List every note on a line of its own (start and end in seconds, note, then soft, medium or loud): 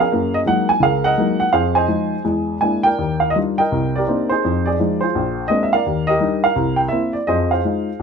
0.00 0.67 G#4 medium
0.00 0.67 A#4 medium
0.00 0.33 F5 medium
0.12 0.44 F#2 medium
0.12 0.43 A#3 medium
0.34 0.39 D#5 medium
0.46 0.72 F#3 soft
0.46 0.71 G#3 soft
0.46 0.72 A#3 soft
0.46 0.72 D#4 medium
0.46 0.69 F#5 medium
0.69 0.83 G#5 medium
0.80 1.13 C#2 medium
0.80 1.12 C#3 medium
0.80 1.51 G#4 medium
0.80 1.07 F5 medium
0.85 1.03 A#4 medium
1.04 1.50 A#4 medium
1.04 1.51 D#5 medium
1.04 1.38 F#5 medium
1.18 1.43 F#3 soft
1.18 1.43 G#3 soft
1.18 1.44 A#3 soft
1.18 1.43 D#4 medium
1.40 1.52 F#5 medium
1.53 1.85 F2 medium
1.53 2.21 G#4 medium
1.53 1.75 C5 medium
1.53 1.78 F5 medium
1.75 2.22 C5 medium
1.75 2.22 D#5 medium
1.75 2.57 G#5 medium
1.88 2.14 F3 soft
1.88 2.14 G#3 soft
1.88 2.14 D#4 soft
2.25 2.57 E2 medium
2.25 2.57 G#3 medium
2.61 2.87 G#3 soft
2.61 2.88 A#3 soft
2.61 2.88 D4 soft
2.61 2.88 E4 soft
2.61 2.87 G#5 medium
2.83 3.55 A#4 medium
2.83 3.54 D5 soft
2.83 3.19 G5 medium
2.98 3.30 D#2 medium
3.20 3.35 F5 medium
3.30 3.36 D#5 medium
3.35 3.61 G3 soft
3.35 3.61 D4 soft
3.35 3.61 D#4 soft
3.35 3.61 F4 soft
3.58 3.96 A#4 medium
3.58 4.27 D#5 medium
3.58 3.96 G5 medium
3.72 4.03 C2 medium
3.96 4.41 G4 soft
3.96 4.41 A#4 soft
3.96 4.29 D5 medium
4.07 4.32 A#3 soft
4.07 4.32 C4 soft
4.07 4.33 D4 soft
4.07 4.30 D#4 soft
4.29 4.78 D#4 soft
4.29 4.66 G#4 medium
4.29 4.67 C5 medium
4.45 4.75 F2 medium
4.66 5.02 G#4 medium
4.66 4.99 D5 medium
4.79 5.04 F3 soft
4.79 5.04 G#3 soft
4.79 5.04 D#4 soft
5.01 5.70 F4 soft
5.01 5.70 G#4 soft
5.01 5.46 C5 medium
5.15 5.46 A#1 medium
5.48 5.74 G#3 soft
5.48 5.74 A#3 soft
5.48 5.75 C4 soft
5.48 5.75 D4 soft
5.48 5.64 D#5 medium
5.63 5.73 E5 medium
5.73 6.08 A#4 medium
5.73 6.41 D5 medium
5.73 6.09 F5 medium
5.86 6.16 D#2 medium
6.07 6.53 G4 medium
6.07 6.43 A#4 medium
6.07 6.44 D#5 medium
6.20 6.45 G3 soft
6.20 6.45 D4 soft
6.20 6.45 D#4 medium
6.44 7.11 A#4 medium
6.44 6.80 F5 medium
6.56 6.86 C2 medium
6.76 6.89 G5 medium
6.88 7.16 A#3 soft
6.88 7.16 C4 soft
6.88 7.12 E5 medium
6.92 7.16 E4 soft
7.13 7.27 D5 medium
7.27 7.58 F2 medium
7.27 7.59 F3 medium
7.27 7.51 G#4 medium
7.27 7.51 C5 medium
7.27 7.51 D#5 medium
7.51 8.02 G#4 soft
7.51 8.02 C5 soft
7.51 8.02 F5 medium
7.65 7.89 G#3 soft
7.65 7.89 D#4 soft
7.65 7.89 F4 soft